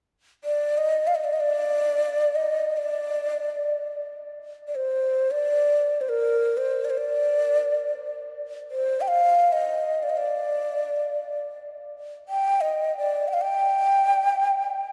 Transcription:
0, 0, Header, 1, 2, 480
1, 0, Start_track
1, 0, Tempo, 500000
1, 14326, End_track
2, 0, Start_track
2, 0, Title_t, "Ney"
2, 0, Program_c, 0, 77
2, 424, Note_on_c, 0, 74, 75
2, 745, Note_on_c, 0, 75, 69
2, 759, Note_off_c, 0, 74, 0
2, 1029, Note_on_c, 0, 77, 66
2, 1043, Note_off_c, 0, 75, 0
2, 1108, Note_on_c, 0, 75, 59
2, 1123, Note_off_c, 0, 77, 0
2, 1191, Note_on_c, 0, 74, 70
2, 1206, Note_off_c, 0, 75, 0
2, 1277, Note_on_c, 0, 75, 61
2, 1291, Note_off_c, 0, 74, 0
2, 1296, Note_off_c, 0, 75, 0
2, 1296, Note_on_c, 0, 75, 53
2, 1347, Note_on_c, 0, 74, 82
2, 1361, Note_off_c, 0, 75, 0
2, 2259, Note_on_c, 0, 75, 78
2, 2274, Note_off_c, 0, 74, 0
2, 2659, Note_on_c, 0, 74, 78
2, 2673, Note_off_c, 0, 75, 0
2, 3872, Note_off_c, 0, 74, 0
2, 4491, Note_on_c, 0, 74, 49
2, 4564, Note_on_c, 0, 72, 70
2, 4578, Note_off_c, 0, 74, 0
2, 5100, Note_on_c, 0, 74, 90
2, 5114, Note_off_c, 0, 72, 0
2, 5769, Note_on_c, 0, 72, 48
2, 5783, Note_off_c, 0, 74, 0
2, 5846, Note_on_c, 0, 70, 76
2, 5861, Note_off_c, 0, 72, 0
2, 6308, Note_on_c, 0, 72, 64
2, 6323, Note_off_c, 0, 70, 0
2, 6572, Note_on_c, 0, 74, 55
2, 6586, Note_off_c, 0, 72, 0
2, 6624, Note_on_c, 0, 72, 55
2, 6638, Note_off_c, 0, 74, 0
2, 6697, Note_on_c, 0, 74, 78
2, 6712, Note_off_c, 0, 72, 0
2, 7811, Note_off_c, 0, 74, 0
2, 8359, Note_on_c, 0, 72, 72
2, 8651, Note_on_c, 0, 79, 59
2, 8665, Note_off_c, 0, 72, 0
2, 8716, Note_on_c, 0, 77, 89
2, 8730, Note_off_c, 0, 79, 0
2, 9144, Note_on_c, 0, 75, 79
2, 9158, Note_off_c, 0, 77, 0
2, 9627, Note_on_c, 0, 74, 63
2, 9641, Note_off_c, 0, 75, 0
2, 9694, Note_on_c, 0, 75, 52
2, 9709, Note_off_c, 0, 74, 0
2, 9766, Note_on_c, 0, 74, 67
2, 9780, Note_off_c, 0, 75, 0
2, 11093, Note_off_c, 0, 74, 0
2, 11794, Note_on_c, 0, 79, 78
2, 12104, Note_on_c, 0, 75, 73
2, 12119, Note_off_c, 0, 79, 0
2, 12454, Note_off_c, 0, 75, 0
2, 12458, Note_on_c, 0, 74, 69
2, 12749, Note_on_c, 0, 79, 68
2, 12763, Note_off_c, 0, 74, 0
2, 12801, Note_on_c, 0, 77, 68
2, 12815, Note_off_c, 0, 79, 0
2, 12877, Note_on_c, 0, 79, 87
2, 12892, Note_off_c, 0, 77, 0
2, 14326, Note_off_c, 0, 79, 0
2, 14326, End_track
0, 0, End_of_file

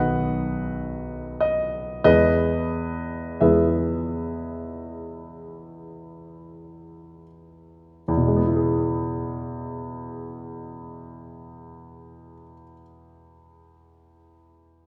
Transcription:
0, 0, Header, 1, 2, 480
1, 0, Start_track
1, 0, Key_signature, 4, "major"
1, 0, Tempo, 1123596
1, 359, Tempo, 1224490
1, 839, Time_signature, 4, 2, 24, 8
1, 839, Tempo, 1357466
1, 1319, Tempo, 1470588
1, 1799, Tempo, 1558442
1, 2279, Tempo, 1621622
1, 2759, Tempo, 1546392
1, 4199, Tempo, 1612903
1, 4840, End_track
2, 0, Start_track
2, 0, Title_t, "Grand piano"
2, 0, Program_c, 0, 0
2, 0, Control_c, 0, 64, 127
2, 0, Note_on_c, 0, 35, 43
2, 0, Note_on_c, 0, 51, 35
2, 0, Note_on_c, 0, 54, 34
2, 0, Note_on_c, 0, 59, 38
2, 0, Note_on_c, 0, 71, 57
2, 0, Note_on_c, 0, 75, 54
2, 0, Note_on_c, 0, 78, 66
2, 573, Note_off_c, 0, 71, 0
2, 574, Note_off_c, 0, 75, 0
2, 580, Note_on_c, 0, 75, 60
2, 586, Note_off_c, 0, 78, 0
2, 820, Note_off_c, 0, 35, 0
2, 820, Note_off_c, 0, 51, 0
2, 822, Note_off_c, 0, 54, 0
2, 822, Note_off_c, 0, 59, 0
2, 825, Note_off_c, 0, 75, 0
2, 831, Note_on_c, 0, 52, 33
2, 831, Note_on_c, 0, 75, 80
2, 832, Note_on_c, 0, 40, 39
2, 834, Note_on_c, 0, 68, 55
2, 834, Note_on_c, 0, 71, 57
2, 836, Note_on_c, 0, 59, 32
2, 837, Note_on_c, 0, 56, 30
2, 846, Control_c, 0, 64, 0
2, 916, Control_c, 0, 64, 127
2, 1302, Note_off_c, 0, 40, 0
2, 1302, Note_off_c, 0, 52, 0
2, 1303, Note_off_c, 0, 68, 0
2, 1303, Note_off_c, 0, 71, 0
2, 1304, Note_off_c, 0, 56, 0
2, 1304, Note_off_c, 0, 59, 0
2, 1313, Note_on_c, 0, 76, 49
2, 1315, Note_on_c, 0, 40, 33
2, 1316, Note_off_c, 0, 75, 0
2, 1316, Note_on_c, 0, 52, 27
2, 1317, Note_on_c, 0, 56, 27
2, 1317, Note_on_c, 0, 68, 36
2, 1318, Note_on_c, 0, 71, 36
2, 1319, Note_on_c, 0, 59, 28
2, 2510, Note_off_c, 0, 68, 0
2, 2510, Note_off_c, 0, 71, 0
2, 2520, Note_off_c, 0, 76, 0
2, 2746, Note_off_c, 0, 40, 0
2, 2747, Note_off_c, 0, 52, 0
2, 2747, Note_off_c, 0, 56, 0
2, 2748, Note_off_c, 0, 59, 0
2, 2761, Note_on_c, 0, 40, 41
2, 2769, Control_c, 0, 64, 0
2, 2790, Note_on_c, 0, 47, 34
2, 2821, Note_on_c, 0, 56, 32
2, 2849, Note_on_c, 0, 59, 36
2, 2857, Control_c, 0, 64, 127
2, 2881, Note_on_c, 0, 64, 33
2, 2910, Note_on_c, 0, 68, 33
2, 4082, Note_off_c, 0, 40, 0
2, 4110, Note_off_c, 0, 47, 0
2, 4142, Note_off_c, 0, 56, 0
2, 4170, Note_off_c, 0, 59, 0
2, 4201, Note_off_c, 0, 64, 0
2, 4229, Note_off_c, 0, 68, 0
2, 4840, End_track
0, 0, End_of_file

